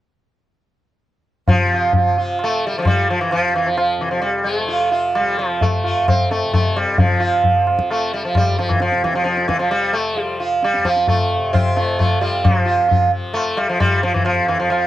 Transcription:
1.48 C3 F3, tabla tin, tabla ge
1.74 F4
1.93 F4, tabla tin, tabla ge
2.13 F3
2.18 F4
2.39 tabla na
2.44 A3
2.67 G3
2.74 F3
2.78 F3 G3
2.82 F3, tabla na, tabla ge
2.87 G3
3.10 F3
3.21 E3
3.31 F2 F3, tabla na
3.55 E3
3.66 F3
3.77 F3, tabla na
3.98 C3 E3
4.11 F3
4.22 G3, tabla tin
4.44 A3
4.58 F3
4.68 F4, tabla tin
4.91 F4, tabla na
5.15 G3, tabla na
5.21 F3
5.39 F3
5.61 A3, tabla tin, tabla ge
5.82 F2 F4, tabla na
6.08 C4, tabla na, tabla ge
6.31 A3, tabla te
6.43 C3
6.54 A3, tabla tin, tabla ge
6.77 G3, tabla na
6.98 F3, tabla tin, tabla ge
7.07 F3
7.20 F4
7.44 tabla tin, tabla ge
7.67 F3, tabla na
7.79 tabla ke
7.91 A3, tabla na
8.14 G3
8.25 F3
8.33 F2, tabla na, tabla ge
8.37 G3
8.59 F3, tabla te
8.69 E3, tabla ge
8.80 F3, tabla te
8.92 C3, tabla te
9.04 E3, tabla ke
9.14 F3, tabla te
9.24 F3, tabla te
9.37 tabla te
9.48 E3, tabla ke
9.52 F3
9.59 F3, tabla te
9.71 G3, tabla tin
9.93 A3
10.14 F3, tabla tin
10.22 G3
10.40 F4
10.63 G3, tabla te
10.74 F2, tabla te
10.85 F3 F4, tabla ke
10.96 tabla te
11.07 A3 F4, tabla tin, tabla ge
11.37 C3
11.53 C4 F4, tabla na, tabla ge
11.76 A3 F4, tabla te
11.99 F3 A3 F4, tabla tin, tabla ge
12.21 G3 F4, tabla na
12.44 C3 F3, tabla tin, tabla ge
12.65 F4
12.88 F4, tabla tin, tabla ge
13.07 F3
13.34 A3, tabla na
13.57 G3, tabla na
13.69 F3
13.80 G3, tabla na, tabla ge
14.03 F3, tabla te
14.14 E3, tabla ge
14.25 F2 F3, tabla na
14.48 E3, tabla na
14.60 F3
14.70 F3, tabla na

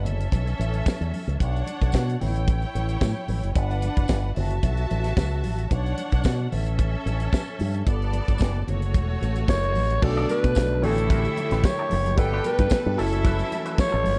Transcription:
0.05 F#1 C#4 A4 E5, closed hi-hat, low conga
0.20 closed hi-hat
0.32 B1, kick, closed hi-hat, muted conga
0.47 closed hi-hat
0.59 A1, closed hi-hat, muted conga
0.73 closed hi-hat
0.86 kick, snare, tambourine, high conga
1.01 E2, closed hi-hat
1.13 open hi-hat, high conga
1.27 C#2, closed hi-hat
1.40 B1 D4 C#5 F#5, kick, closed hi-hat
1.56 closed hi-hat
1.67 closed hi-hat, muted conga
1.82 B1, kick, closed hi-hat
1.92 B2, kick, snare, tambourine, high conga
2.09 closed hi-hat
2.21 A1 E4 C#5 G5, open hi-hat, low conga
2.35 closed hi-hat
2.48 kick, closed hi-hat, muted conga
2.62 closed hi-hat
2.75 A1, closed hi-hat, muted conga
2.88 closed hi-hat
3.01 A2, kick, snare, tambourine, high conga
3.28 A1, open hi-hat, high conga
3.43 F#1, closed hi-hat
3.55 G1 D4 B4 F#5, kick, closed hi-hat, muted conga
3.71 closed hi-hat
3.82 closed hi-hat, muted conga
3.96 F#1, kick, closed hi-hat
4.08 G1, kick, snare, tambourine, high conga
4.36 F#1 F#4 E5 A5, open hi-hat, low conga
4.50 closed hi-hat
4.63 B1, kick, closed hi-hat, muted conga
4.77 closed hi-hat
4.90 A1, closed hi-hat, muted conga
5.04 snare, closed hi-hat
5.17 C#2, kick, snare, tambourine, high conga
5.43 A1, open hi-hat, high conga
5.58 closed hi-hat
5.71 B1 D4 C#5 F#5, kick, closed hi-hat
5.86 closed hi-hat
5.97 closed hi-hat, muted conga
6.12 B1, kick, closed hi-hat
6.24 B2, kick, snare, tambourine, high conga
6.52 A1 C#4 A4 E5, open hi-hat, low conga
6.66 closed hi-hat
6.79 kick, closed hi-hat, muted conga
7.06 A1, closed hi-hat, muted conga
7.20 closed hi-hat
7.33 kick, snare, tambourine, high conga
7.59 G2, open hi-hat, high conga
7.74 closed hi-hat
7.86 G1 B3 A4 D5, kick, closed hi-hat
8.02 closed hi-hat
8.13 closed hi-hat, muted conga
8.28 G1, kick, closed hi-hat
8.38 F#1, kick, snare, tambourine, high conga
8.68 F#1 A3 F#4 C#5, closed hi-hat, low conga
8.82 closed hi-hat
8.94 E1, kick, closed hi-hat, muted conga
9.21 A1, closed hi-hat, muted conga
9.35 closed hi-hat
9.48 F#1 C#5, kick, snare, tambourine, high conga
9.63 closed hi-hat
9.75 A1, open hi-hat, high conga
9.90 closed hi-hat
10.02 B1 B2 D3 A3 C#4 D4 A4 D5, muted clean electric guitar stroke, kick, crash, muted conga
10.09 D4
10.17 D4 A4 D5
10.29 D4 A4 B4 C#5, closed hi-hat, muted conga
10.44 B2, muted clean electric guitar stroke, kick, closed hi-hat
10.55 B1, muted clean electric guitar stroke, kick, snare, closed hi-hat, tambourine, high conga
10.72 muted clean electric guitar stroke
10.82 A1 A3 C#4 E4 G4 A4 C#5 E5, open hi-hat, low conga
10.98 muted clean electric guitar stroke, closed hi-hat
11.10 C#4 G4 B4, kick, closed hi-hat, muted conga
11.24 closed hi-hat
11.37 muted clean electric guitar stroke, closed hi-hat, muted conga
11.51 A1 C#4 G4 B4, snare, closed hi-hat
11.64 C#5, muted clean electric guitar stroke, kick, snare, closed hi-hat, tambourine, high conga
11.79 C#4 G4 A4
11.90 F#1, muted clean electric guitar stroke, open hi-hat, high conga
12.06 muted clean electric guitar stroke, closed hi-hat, high conga
12.16 G1 B2 G3 A3 G4 A4 B4 G5, muted clean electric guitar stroke, kick, closed hi-hat
12.33 B3 F#4 B4
12.44 B3 F#4 A4 B4, closed hi-hat, muted conga
12.58 G2, muted clean electric guitar stroke, kick, closed hi-hat
12.70 muted clean electric guitar stroke, kick, snare, closed hi-hat, tambourine, high conga
12.86 G2, muted clean electric guitar stroke
12.97 F#1 E3 F#3 C#4 E4 A4 E5, open hi-hat
13.12 muted clean electric guitar stroke, closed hi-hat
13.24 C#4 E4 B4, kick, closed hi-hat, muted conga
13.39 muted clean electric guitar stroke, closed hi-hat
13.52 muted clean electric guitar stroke, closed hi-hat, muted conga
13.65 C#4 E4 B4, closed hi-hat
13.78 C#5, muted clean electric guitar stroke, kick, snare, closed hi-hat, tambourine, high conga
13.86 F#3 F#4
13.92 A1 G3 C#4 E4 G4 A4
13.99 A3 A4
14.04 G1 B3 B4, muted clean electric guitar stroke, open hi-hat, high conga
14.13 C#4 C#5

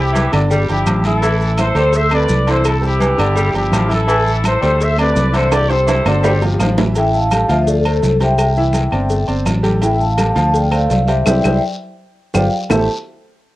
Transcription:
Already playing: C2 G3 G4 C5
0.00 E4 G4
0.13 E3, cowbell, high conga, low agogo, short guiro, maracas
0.32 G1 D3 D4 D5, cowbell, low conga, low agogo, short guiro, claves, maracas
0.51 G3, cowbell, high conga, low conga, long guiro, maracas
0.68 G1 F3 D4 E4 G4, high conga, low agogo, maracas
0.86 A1 F3, cowbell, high conga, low agogo, short guiro, claves, maracas
1.04 E3 E4 A4 E5, high conga, low agogo, short guiro, maracas
1.22 E3 E4 E5, cowbell, high conga, low agogo, long guiro, maracas
1.40 high conga, maracas
1.57 E3 E4 A4 C5 E5, cowbell, high conga, low agogo, short guiro, claves, maracas
1.75 D2 G3 A3 A4 C5, cowbell, high conga, low agogo, short guiro, maracas
1.93 C5 E5, cowbell, high conga, long guiro, maracas
2.11 C3 A3 C4 A4 B4 D5, high conga, low agogo, claves, maracas
2.29 C2, cowbell, high conga, short guiro, maracas
2.47 D3 E3 E4 A4 C5 E5, cowbell, low agogo, short guiro, maracas
2.64 E4 A4, cowbell, high conga, low agogo, long guiro, claves, maracas
2.82 G3 G4 C5, high conga, maracas
2.86 E4 G4
3.00 E3, cowbell, high conga, low agogo, short guiro, maracas
3.17 G1 D3 D4 D5, cowbell, low conga, low agogo, short guiro, claves, maracas
3.36 G3, cowbell, high conga, low conga, long guiro, maracas
3.53 G1 F3 D4 G4, high conga, low agogo, maracas
3.57 E4
3.71 A1 F3, cowbell, high conga, low timbale, low agogo, short guiro, claves, maracas
3.88 E3 E4 E5, high conga, low agogo, short guiro, maracas
3.93 E4 A4
4.07 E3 E4 E5, cowbell, high conga, low agogo, long guiro, maracas
4.26 high conga, maracas
4.43 E3 E4 A4 C5 E5, cowbell, high conga, low agogo, short guiro, claves, maracas
4.61 D2 G3 A3 A4 C5, cowbell, high conga, low agogo, short guiro, maracas
4.80 C5 E5, cowbell, high conga, long guiro, maracas
4.97 C3 A3 C4 A4 B4 D5, high conga, low agogo, claves, maracas
5.16 C2, cowbell, high conga, low timbale, short guiro, maracas
5.33 D3 E3 E4 A4 C5 E5, cowbell, low agogo, short guiro, maracas
5.51 G4 D5, cowbell, high conga, high timbale, low agogo, long guiro, claves, maracas
5.70 G3 G4 A4 C5, high conga, high timbale, maracas
5.87 E3, cowbell, high conga, high timbale, low agogo, short guiro, maracas
6.05 G1 D3 D4 D5, cowbell, low conga, low timbale, low agogo, short guiro, claves, maracas
6.23 G3, cowbell, high conga, low timbale, long guiro, maracas
6.42 F3 F4 G4, high bongo, high conga, low timbale, low agogo, maracas
6.54 high bongo
6.59 A1 F3, cowbell, high conga, low timbale, low agogo, short guiro, claves, maracas
6.66 low bongo
6.77 E3 E4 E5, low bongo, high conga, low timbale, low agogo, short guiro, maracas
6.96 E3 E4 E5 G5, cowbell, low agogo, long guiro, maracas
7.14 F5 A5, high conga, maracas
7.31 G3 G4 A4, cowbell, high conga, low agogo, short guiro, claves, maracas
7.48 D2 F3 F4 C5 E5 F5, cowbell, high conga, low agogo, short guiro, maracas
7.67 A4 D5, cowbell, high conga, long guiro, maracas
7.84 A3 A4 C5, high conga, low agogo, claves, maracas
8.02 C2, cowbell, high conga, low timbale, short guiro, maracas
8.20 G3 G4 C5 E5 G5, cowbell, high conga, low agogo, short guiro, maracas
8.38 cowbell, high conga, low agogo, long guiro, claves, maracas
8.56 E3 E4 E5, high conga, maracas
8.73 cowbell, high conga, low agogo, short guiro, maracas
8.91 G1 C4 C5 D5, cowbell, low conga, low agogo, short guiro, claves, maracas
9.09 cowbell, high conga, long guiro, maracas
9.27 G1 C4 C5 D5, high conga, low agogo, maracas
9.45 A1, cowbell, high conga, low timbale, low agogo, short guiro, claves, maracas
9.63 G3 G4 A4, high conga, low agogo, short guiro, maracas
9.81 E3 E4 E5 G5, cowbell, low agogo, long guiro, maracas
9.99 F5 A5, high conga, maracas
10.17 G3 G4 A4, cowbell, high conga, low agogo, short guiro, claves, maracas
10.35 D2 F3 F4 F5 A5, cowbell, high conga, low agogo, short guiro, maracas
10.54 D5 G5, cowbell, high conga, long guiro, maracas
10.71 A3 A4 C5 D5 F5, high conga, low agogo, claves, maracas
10.90 C2, cowbell, high conga, low timbale, short guiro, maracas
11.07 G3 G4 C5 E5, cowbell, low agogo, short guiro, maracas
11.25 C2 E4 G4 C5 D5 E5 G5, cowbell, high conga, high timbale, long guiro, claves, maracas
11.43 C2 E4 G4 C5 D5 E5 G5, cowbell, high conga, high timbale, long guiro, claves, maracas
12.34 G1 F4 G4 C5 D5 F5 G5, cowbell, high conga, high timbale, long guiro, claves, maracas
12.70 A1 A3 E4 G4 A4 C5 E5 A5, low bongo, low conga, low timbale, long guiro, claves, maracas

